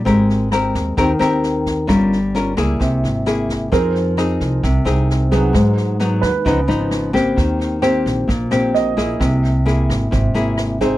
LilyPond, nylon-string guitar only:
\new Staff \with { instrumentName = "Nylon-string guitar" } { \time 4/4 \key c \minor \tempo 4 = 131 << { <c' g' bes'>4 <c' g' bes'>4 <c' g' bes'>8 <c' g' bes'>4. | <des' f' bes'>8 r8 <des' f' bes'>8 <bes e' aes'>4. <bes e' gis'>4 | <c' ees' aes'>4 <c' ees' aes'>4 r8 <c' ees' aes'>4 <fis b ees'>8~ | <fis b ees'>4 <ges ces' ees'>8 r8 <f ces' ees'>8 <f ces' ees'>4 <bes c' g'>8~ |
<bes c' g'>4 <bes c' g'>4 r8 <bes c' g'>4 <bes e' aes'>8~ | <bes e' aes'>4 <bes e' gis'>4. <bes e' gis'>4 <c' dis' gis'>8 | } \\ { aes2 ees2 | g2 c2 | f2 c2 | aes,2 des2 |
ees2 bes,2 | c2 c2 | } >> }